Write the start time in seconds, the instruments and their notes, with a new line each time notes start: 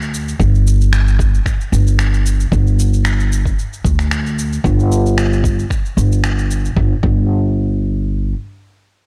Already playing: upright bass D2
0.02 shaker
0.14 shaker
0.28 shaker
0.40 upright bass G1, kick, shaker
0.55 shaker
0.67 shaker
0.81 shaker
0.93 finger snap, shaker
1.08 shaker
1.19 kick, shaker
1.34 shaker
1.46 finger snap, kick, shaker
1.61 shaker
1.72 upright bass G1, shaker
1.87 shaker
1.99 finger snap, shaker
2.14 shaker
2.26 shaker
2.40 shaker
2.52 upright bass G1, kick, shaker
2.67 shaker
2.79 shaker
2.93 shaker
3.05 finger snap, shaker
3.20 shaker
3.32 shaker
3.46 kick, shaker
3.59 shaker
3.73 shaker
3.85 upright bass D2, kick, shaker
3.99 finger snap, shaker
4.11 finger snap, shaker
4.26 shaker
4.39 shaker
4.53 shaker
4.64 upright bass G1, kick, shaker
4.80 shaker
4.92 shaker
5.06 shaker
5.18 finger snap, shaker
5.33 shaker
5.44 kick, shaker
5.59 shaker
5.70 finger snap, kick, shaker
5.86 shaker
5.97 upright bass G1, shaker
6.12 shaker
6.24 finger snap, shaker
6.39 shaker
6.51 shaker
6.65 shaker
6.76 upright bass G1, kick
7.03 upright bass G1, kick